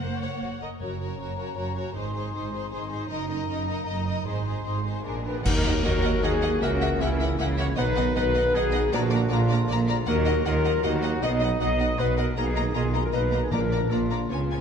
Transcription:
Already playing: F#2 A#3 F#5
0.00 F#1 A#4 C5
0.21 F#1 C#5
0.42 F#1 F#4
0.61 F#1 A#4 D#5
0.79 F#1 F#2 A#3 C#4 F#4 A#4 C#5 A#5
1.00 F#4 A#4 C#5
1.18 F#1 F#2 F#4 A#4 C#5
1.38 F#4 A#4 C#5
1.56 F#1 F#2 F#4 A#4 C#5
1.76 F#4 A#4 C#5
1.95 G#1 G#2 C4 D#4 G#4 C5 C6
2.15 D#4 G#4 C5
2.34 G#1 G#2 D#4 G#4 C5
2.53 D#4 G#4 C5
2.72 G#1 G#2 D#4 G#4 C5
2.90 D#4 G#4 C5
3.09 F#1 F#2 A#3 D#4 A#4 D#5 A#5
3.29 D#4 A#4 D#5
3.49 F#1 F#2 D#4 A#4 D#5
3.68 D#4 A#4 D#5
3.86 F#1 F#2 D#4 A#4 D#5
4.06 D#4 A#4 D#5
4.25 G#1 G#2 C4 D#4 G#4 C5 C6
4.46 D#4 G#4 C5
4.65 G#1 G#2 D#4 G#4 C5
4.85 D#4 G#4 C5
5.05 A#1 A#2 G#3 D4 G#4 A#4 G#5
5.25 D4 G#4 A#4 B4
5.43 D#2 D#3 F#3 A#3 D#4 A#4 D#5 F#5, concert bass drum, crash
5.63 A#3 D#5 F#5
5.82 D#2 D#3 A#3 F#4 A#4 D#5 F#5
6.02 A#3 D#5 F#5
6.21 D#2 D#3 A#3 G#4 D#5 F#5
6.41 A#3 D#5 F#5
6.60 C#2 C#3 E3 A#3 F#4 A#4 E5 F#5
6.80 A#3 E5 F#5
6.99 C#2 C#3 A#3 C#4 E4 E5 F#5
7.18 A#3 E5
7.22 F#5
7.38 C#2 C#3 A#3 E4 E5 F#5
7.57 A#3 C#5 E5 F#5
7.76 B1 B2 D#3 B3 D#4 B4 D#5 F#5
7.96 B3 D#5 F#5
8.15 B1 B2 B3 B4 D#5 F#5
8.35 B3 D#5 F#5
8.55 B1 B2 B3 D#4 G#4 D#5 F#5
8.71 B3 D#5 F#5
8.93 A#1 A#2 D3 A#3 D4 F#4 D5 A#5
9.11 A#3 D5 A#5
9.29 A#1 A#2 A#3 F4 D5 A#5
9.49 A#3 D5 A#5
9.69 A#1 A#2 A#3 F4 D5 A#5
9.89 A#3 D5 A#5
10.06 D#2 D#3 F#3 A#3 F#4 A#4 D#5 F#5
10.26 A#3 D#5 F#5
10.46 D#2 D#3 A#3 F4 A#4 D#5 F#5
10.65 A#3 D#5 F#5
10.82 D#2 D#3 A#3 D#4 F#4 D#5 F#5
11.03 A#3 D#5 F#5
11.21 B1 B2 B3 D#5 F#5
11.40 B3 D#5 F#5
11.61 B1 B2 B3 D#5 F#5
11.79 B3 D#5 F#5
11.98 B1 B2 B3 B4 D#5 F#5
12.16 B3 A#4 D#5 F#5
12.36 B1 B2 D#3 A#3 D#4 G#4 D#5 A#5
12.56 A#3 D#5 A#5
12.74 B1 B2 A#3 F4 G#4 D#5 A#5
12.95 A#3 D#5 A#5
13.04 A#4
13.13 B1 B2 A#3 D#4 B4 D#5 A#5
13.32 A#3 D#5 A#5
13.42 G#4
13.51 A#1 A#2 D3 A#3 D4 A#4 D5 A#5
13.72 A#3 D5 A#5
13.90 A#1 A#2 A#3 F4 D5 A#5
14.11 A#3 D5 A#5
14.29 C#2 C#3 B3 C#4 F4 C#5 G#5
14.50 B3 C#5 G#5

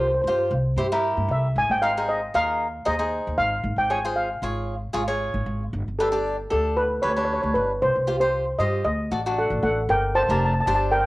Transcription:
Already playing: C2 F4 G4 C5
0.00 C5
0.07 C5
0.14 C5
0.22 G2 C5
0.27 F4 G4 C5
0.39 C5
0.51 C2
0.76 G2 E4 G4 C5
0.92 E4 G4 A#4
1.17 G2
1.28 C2 E5
1.56 G#1 G#5
1.69 G#1 G5
1.82 D#4 G#4 C5 F5
1.97 D#4 G#4 C5
2.09 D#5
2.34 D#2 D#4 G#4 A#4 F5
2.85 D#2 D#4 G#4 C5 D#5
2.99 D#4 G#4 C5
3.27 D#2
3.38 G#1 F5
3.64 G#1
3.76 G#1 G5
3.90 F4 G#4 C#5 G#5
4.05 F4 G#4 C5
4.16 F5
4.42 G#1 F4 G#4 C#5
4.93 G#1 F4 G#4 C#5
5.08 F4 G#4 C#5
5.34 G#1
5.46 G#1
5.73 G1
5.88 G1
5.99 D4 G4 A4 B4
6.12 D4 G4 D5
6.50 D2 D4 G4 A4
6.77 B4
7.02 D2 D4 G4 B4 C#5
7.10 C#5
7.17 D4 G4 B4 C#5
7.25 C#5
7.33 C#5
7.42 D2 C#5
7.54 G1 B4
7.82 C2 C5
7.96 C2
8.07 F4 G4 C5
8.20 F4 G4 C5
8.59 G2 F4 G4 C5 D#5
8.84 D2 D#5
9.11 A1 F#4 A4 D5
9.26 D4 F#4 A4
9.38 A4 F#5
9.50 A1
9.63 A1 A4 F#5
9.89 G1 A#4 G5
10.15 C5 A5
10.23 A5
10.29 F1 D4 G4 A#4 A5
10.38 A5
10.45 A5
10.54 A5
10.60 A5
10.66 G1 D4 G4 C5 A5
10.75 A5
10.91 A#4 G5
11.01 G5

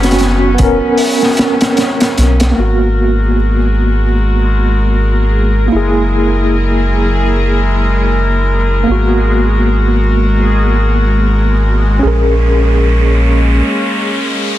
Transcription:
Already playing: F#1 F#3 B3 C#4
0.00 B3 C#4, snare, closed hi-hat
0.05 F#4
0.11 snare, closed hi-hat
0.18 snare, closed hi-hat
0.55 B3, closed hi-hat
0.59 E1 C#4 A#4, kick
0.98 open hi-hat
1.22 snare
1.37 snare, closed hi-hat
1.61 snare, closed hi-hat
1.77 snare, closed hi-hat
2.00 snare, closed hi-hat
2.17 B1, snare, closed hi-hat
2.40 snare, closed hi-hat
2.52 G#3 A#3 G#4
2.56 G#1 B3 F#4 A#4
5.68 F#3 A#3 E4 G#4
5.72 F#1 E4
5.76 G#4
8.83 G#3 A#3 B3 F#4
8.87 G#1 F#4, riser
11.99 A#1 G#3 A#3 C#4 G#4
12.07 A#4

